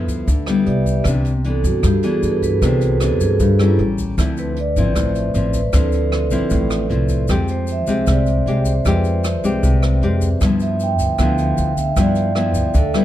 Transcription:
Already playing: G2 F3 B3 E4 A4 B4 E5
0.08 D2, kick, closed hi-hat, shaker
0.27 D2 D3, kick, closed hi-hat, shaker
0.47 G3 B3 E4, cross-stick, closed hi-hat, shaker
0.64 C2 G4 B4 D5 E5, closed hi-hat
0.86 kick, closed hi-hat, shaker
1.04 C2 C3 E3 B3 D4, kick, cross-stick, closed hi-hat, shaker
1.25 closed hi-hat, shaker
1.44 E3 B3 D4, closed hi-hat
1.48 A4
1.64 G2 F#4, kick, closed hi-hat, shaker
1.83 G2 G4, kick, cross-stick, closed hi-hat, shaker
2.03 E3 B3 D4 G#4, closed hi-hat, shaker
2.23 G2 A4, closed hi-hat, shaker
2.42 B4, kick, closed hi-hat, shaker
2.62 C2 C3 E3 B3 D4 C5, kick, cross-stick, closed hi-hat, shaker
2.81 B4, closed hi-hat, shaker
3.00 E3 B3 D4 A4, cross-stick, closed hi-hat, shaker
3.20 G2 G#4, kick, closed hi-hat, shaker
3.40 G2 G4, kick, closed hi-hat, shaker
3.59 G3 A#3 C#4 E4, cross-stick, closed hi-hat, shaker
3.79 A1, closed hi-hat
3.98 kick, closed hi-hat, shaker
4.18 D2 D3 F3 C4 E4, kick, cross-stick, closed hi-hat, shaker
4.37 B4, closed hi-hat, shaker
4.56 D5, closed hi-hat
4.76 A1 F3 C4 E4, kick, closed hi-hat, shaker
4.95 A1 A2, kick, cross-stick, closed hi-hat, shaker
5.00 C5
5.15 closed hi-hat, shaker
5.34 A1 F3 C4 E4, closed hi-hat, shaker
5.53 B4, kick, closed hi-hat, shaker
5.73 D2 D3 F3 C4 E4, kick, cross-stick, closed hi-hat, shaker
5.78 A4
5.92 closed hi-hat, shaker
6.12 cross-stick, closed hi-hat
6.31 A1 F3 C4 E4, kick, closed hi-hat, shaker
6.50 A1 A2, kick, closed hi-hat, shaker
6.70 cross-stick, closed hi-hat, shaker
6.89 C2 F3 C4 E4, closed hi-hat
7.09 kick, closed hi-hat, shaker
7.28 F2 F3 G#3 C4 G4, kick, cross-stick, closed hi-hat, shaker
7.48 C5, closed hi-hat, shaker
7.67 closed hi-hat, shaker
7.72 E5
7.87 C2 G#3 C4 G4, kick, closed hi-hat, shaker
8.07 C2 C3, kick, cross-stick, closed hi-hat, shaker
8.11 D5
8.26 closed hi-hat, shaker
8.46 C2 G#3 C4 G4, closed hi-hat
8.65 C5, kick, closed hi-hat, shaker
8.85 F2 F3 G#3 C4 G4 B4, kick, cross-stick, closed hi-hat, shaker
9.04 closed hi-hat, shaker
9.24 cross-stick, closed hi-hat, shaker
9.44 C2 G#3 C4 G4, kick, closed hi-hat, shaker
9.63 C2 C3, kick, closed hi-hat, shaker
9.83 cross-stick, closed hi-hat, shaker
10.02 F2 G#3 C4 G4, closed hi-hat
10.21 kick, closed hi-hat, shaker
10.41 G2 F3 B3 E4, kick, cross-stick, closed hi-hat, shaker
10.60 E5, closed hi-hat, shaker
10.80 G5, closed hi-hat, shaker
10.99 D2, kick, closed hi-hat, shaker
11.18 D2 D3 F3 B3 E4, kick, cross-stick, closed hi-hat, shaker
11.23 F5
11.38 closed hi-hat, shaker
11.58 D2, closed hi-hat, shaker
11.77 E5, kick, closed hi-hat, shaker
11.96 G2 F3 B3 E4, kick, cross-stick, closed hi-hat, shaker
12.00 D5
12.15 closed hi-hat, shaker
12.35 F3 B3 E4, cross-stick, closed hi-hat
12.54 D2, kick, closed hi-hat, shaker
12.74 D2 D3 A4, kick, closed hi-hat, shaker
12.94 G3 B3 E4 B4, cross-stick, closed hi-hat, shaker

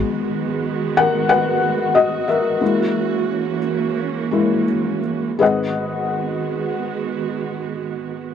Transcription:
Already playing: D#3 G#3 B3 F#4
0.97 A#4 F#5
1.29 B4 F#5
1.95 F#4 D#5
2.28 A#4 E5
2.60 E3 G#3 A#3 C#4 E4
4.31 G#3 A#3 E4
5.39 G#1 D#3 G#3 B3 F#4 G#4 B4 D#5 F#5

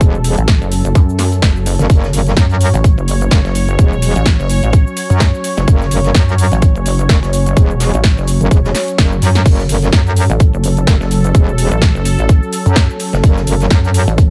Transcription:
Already playing: F#3 C#4 A4
0.01 E1, kick, closed hi-hat, shaker
0.15 shaker
0.24 closed hi-hat, open hi-hat, shaker
0.38 A1, closed hi-hat, shaker
0.48 kick, snare, closed hi-hat, shaker
0.61 F#1, shaker
0.72 closed hi-hat, open hi-hat, shaker
0.85 F#1, closed hi-hat, shaker
0.95 F#2, kick, closed hi-hat, shaker
1.09 shaker
1.18 snare, closed hi-hat, open hi-hat, shaker
1.32 closed hi-hat, shaker
1.42 F#1, kick, snare, closed hi-hat, shaker
1.56 shaker
1.66 closed hi-hat, open hi-hat, shaker
1.79 F#1, snare, closed hi-hat, shaker
1.90 F#1 C#5, kick, closed hi-hat, shaker
2.04 snare, shaker
2.13 F#1, closed hi-hat, open hi-hat, shaker
2.27 snare, closed hi-hat, shaker
2.36 F#2, kick, snare, closed hi-hat, shaker
2.49 closed hi-hat, shaker
2.60 closed hi-hat, open hi-hat, shaker
2.74 A1, closed hi-hat, shaker
2.84 kick, closed hi-hat, shaker
2.97 F#1, shaker
3.08 closed hi-hat, open hi-hat, shaker
3.21 closed hi-hat, shaker
3.31 F#1, kick, snare, closed hi-hat, shaker
3.45 F#1, snare, shaker
3.55 closed hi-hat, open hi-hat, shaker
3.68 closed hi-hat, shaker
3.79 E1, kick, closed hi-hat, shaker
3.93 shaker
4.02 closed hi-hat, open hi-hat, shaker
4.16 A1, closed hi-hat, shaker
4.26 kick, snare, closed hi-hat, shaker
4.39 F#1, shaker
4.50 closed hi-hat, open hi-hat, shaker
4.63 A1, closed hi-hat, shaker
4.73 kick, closed hi-hat, shaker
4.87 shaker
4.97 closed hi-hat, open hi-hat, shaker
5.10 F#2, closed hi-hat, shaker
5.20 kick, snare, closed hi-hat, shaker
5.34 shaker
5.44 closed hi-hat, open hi-hat, shaker
5.57 F#1, snare, closed hi-hat, shaker
5.68 F#1, kick, closed hi-hat, shaker
5.81 snare, shaker
5.91 F#1, closed hi-hat, open hi-hat, shaker
6.04 snare, closed hi-hat, shaker
6.15 F#2, kick, snare, closed hi-hat, shaker
6.29 closed hi-hat, shaker
6.38 closed hi-hat, open hi-hat, shaker
6.52 A1, closed hi-hat, shaker
6.62 kick, closed hi-hat, shaker
6.75 F#1, shaker
6.86 closed hi-hat, open hi-hat, shaker
6.99 closed hi-hat, shaker
7.09 F#1, kick, snare, closed hi-hat, shaker
7.23 F#1, snare, shaker
7.33 closed hi-hat, open hi-hat, shaker
7.46 closed hi-hat, shaker
7.57 E1, kick, closed hi-hat, shaker
7.70 shaker
7.80 snare, closed hi-hat, open hi-hat, shaker
7.94 A1, closed hi-hat, shaker
8.04 kick, snare, closed hi-hat, shaker
8.17 F#1, shaker
8.27 closed hi-hat, open hi-hat, shaker
8.41 F#1, closed hi-hat, shaker
8.51 E1, kick, closed hi-hat, shaker
8.64 snare, shaker
8.75 snare, closed hi-hat, open hi-hat, shaker
8.88 closed hi-hat, shaker
8.98 F#1, kick, snare, closed hi-hat, shaker
9.12 shaker
9.22 F#2, snare, closed hi-hat, open hi-hat, shaker
9.35 snare, closed hi-hat, shaker
9.45 F#1 A4, kick, closed hi-hat, crash, shaker
9.59 snare, shaker
9.69 F#1, closed hi-hat, open hi-hat, shaker
9.82 snare, closed hi-hat, shaker
9.93 F#2, kick, snare, closed hi-hat, shaker
10.07 closed hi-hat, shaker
10.16 closed hi-hat, open hi-hat, shaker
10.30 A1, closed hi-hat, shaker
10.40 kick, closed hi-hat, shaker
10.53 F#1, shaker
10.64 closed hi-hat, open hi-hat, shaker
10.77 closed hi-hat, shaker
10.87 F#1, kick, snare, closed hi-hat, shaker
11.01 F#1, snare, shaker
11.11 closed hi-hat, open hi-hat, shaker
11.24 closed hi-hat, shaker
11.35 E1, kick, closed hi-hat, shaker
11.49 shaker
11.58 closed hi-hat, open hi-hat, shaker
11.71 A1, closed hi-hat, shaker
11.82 kick, snare, closed hi-hat, shaker
11.95 F#1, shaker
12.05 closed hi-hat, open hi-hat, shaker
12.19 A1, closed hi-hat, shaker
12.29 kick, closed hi-hat, shaker
12.43 shaker
12.53 closed hi-hat, open hi-hat, shaker
12.66 F#2, closed hi-hat, shaker
12.76 kick, snare, closed hi-hat, shaker
12.90 shaker
12.99 closed hi-hat, open hi-hat, shaker
13.13 F#1, snare, closed hi-hat, shaker
13.23 F#1, kick, closed hi-hat, shaker
13.37 snare, shaker
13.47 F#1, closed hi-hat, open hi-hat, shaker
13.60 snare, closed hi-hat, shaker
13.70 F#2, kick, snare, closed hi-hat, shaker
13.84 closed hi-hat, shaker
13.94 closed hi-hat, open hi-hat, shaker
14.08 A1, closed hi-hat, shaker
14.18 kick, closed hi-hat, shaker

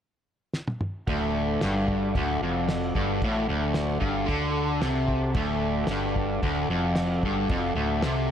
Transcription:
0.54 snare
0.68 high tom
0.81 mid tom
1.07 D1 D2 F#4 A4, kick, crash
1.11 D5
1.61 G1 G2, snare, crash
1.88 kick
2.15 D1 D2, kick, crash
2.41 F1 F2
2.69 snare, crash
2.95 G1 G2, kick
3.22 A1 A2, kick, crash
3.48 D1 D2
3.74 snare, crash
4.00 G1 G2, kick
4.26 D2 D3, kick, crash
4.57 F#5
4.81 C2 C3 A5, snare, crash
5.08 kick
5.31 D1 F#4 A4 D5, kick, crash
5.36 D2
5.87 G1, snare, crash
5.91 G2
6.16 kick
6.43 D1 D2, kick, crash
6.68 F1 F2
6.96 snare, crash
7.23 G1 G2, kick
7.49 F1 F2, kick, crash
7.75 D1 D2
8.02 C2 C3, snare, crash

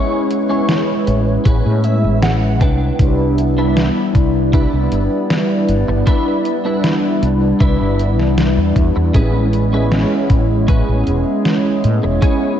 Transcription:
Already playing: G#3 B3 C#4 E4 G#4 B4 C#5
0.31 closed hi-hat
0.49 G#3 B3 C#4 E4 G#4 C#5
0.69 snare, closed hi-hat
1.07 A1, muted clean electric guitar stroke, closed hi-hat
1.45 A1 C#4 G#4 B4, kick, closed hi-hat
1.66 A2
1.84 E5, closed hi-hat
2.04 A1
2.23 F#5, snare, closed hi-hat
2.42 muted clean electric guitar stroke
2.60 C2 B3 D4 E4 B4 D5 G5, kick, closed hi-hat
2.99 C2 G3 B3 D4 E4, kick, closed hi-hat
3.38 closed hi-hat
3.58 G3 B3 D4 E4 B4
3.77 snare, closed hi-hat
4.15 C2, muted clean electric guitar stroke, kick, closed hi-hat
4.53 D4 E4 B4, kick, closed hi-hat
4.73 C2
4.92 G1, closed hi-hat
5.30 snare, closed hi-hat
5.50 muted clean electric guitar stroke
5.69 G1, closed hi-hat
5.88 G1, muted clean electric guitar stroke
6.06 G3 B3 D4 E4 B4, kick, closed hi-hat
6.45 closed hi-hat
6.65 G3 B3 D4 E4 B4
6.84 snare, closed hi-hat
7.22 C2, muted clean electric guitar stroke, closed hi-hat
7.60 C2 D4 E4 B4, kick, closed hi-hat
7.81 G1
8.00 closed hi-hat
8.19 C2, snare
8.38 snare, closed hi-hat
8.57 E2, muted clean electric guitar stroke
8.76 E2, kick, closed hi-hat
8.96 E2, muted clean electric guitar stroke
9.14 A1 G#3 B3 C#4 E4 G#4 B4 C#5, kick, closed hi-hat
9.53 closed hi-hat
9.72 G#3 B3 C#4 E4 G#4 B4
9.92 snare, closed hi-hat
10.30 A1, muted clean electric guitar stroke, kick, closed hi-hat
10.68 C#4 G#4 B4, kick, closed hi-hat
10.89 A1
11.07 E1, closed hi-hat
11.45 snare, closed hi-hat
11.65 muted clean electric guitar stroke
11.84 A2, closed hi-hat
12.03 E1, muted clean electric guitar stroke
12.22 G#3 B3 C#4 E4 G#4 C#5, kick, closed hi-hat

